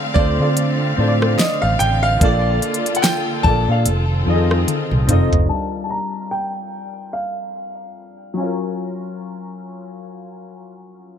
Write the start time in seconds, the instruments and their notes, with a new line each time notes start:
Already playing: string section D3 A3 C4 F5, grand piano C4 D4 F4 A4 D5
0.14 fingered electric bass D2, grand piano C4 D4 F4 A4 D5, kick
0.19 grand piano C5
0.38 fingered electric bass D3, grand piano C4 D4 F4 A4
0.43 grand piano D5
0.57 closed hi-hat
0.96 fingered electric bass A2, grand piano C4 D4 F4 A4
1.01 grand piano C5
1.07 grand piano D5
1.22 cross-stick
1.38 grand piano D#5, snare, closed hi-hat
1.62 fingered electric bass A1, grand piano F5
1.79 fingered electric bass A1, grand piano G5, closed hi-hat
2.03 grand piano F5
2.20 fingered electric bass A#1, grand piano A#3 D4 F4 A4, string section A#3 F4 A4, kick, closed hi-hat
2.25 grand piano D5
2.62 closed hi-hat
2.74 closed hi-hat
2.86 closed hi-hat
2.95 grand piano F#5, closed hi-hat
3.02 grand piano G5, snare, closed hi-hat
3.43 fingered electric bass A#1, grand piano A#3 D4 F4 A4 A5, kick
3.48 grand piano D5
3.67 fingered electric bass A#2, grand piano A#3 D4 F4 A4
3.71 grand piano F5
3.86 fingered electric bass F1, string section D#3 C4 F4, closed hi-hat
4.25 fingered electric bass F2, grand piano C4 D#4 F4 G#4
4.30 grand piano D#5
4.35 grand piano A4
4.51 cross-stick
4.68 closed hi-hat, high tom
4.91 fingered electric bass C2, mid tom
5.07 fingered electric bass F1, grand piano C4 D#4 F4 A4, closed hi-hat, mid tom
5.12 grand piano D#5
5.33 fingered electric bass F#1, closed hi-hat, floor tom
5.46 grand piano G3 D4 A5
5.52 grand piano F4 A#4
5.84 grand piano A5
5.90 grand piano A#5
6.31 grand piano G5
7.13 grand piano F5
8.34 grand piano F#3 C#4
8.40 grand piano F4 A#4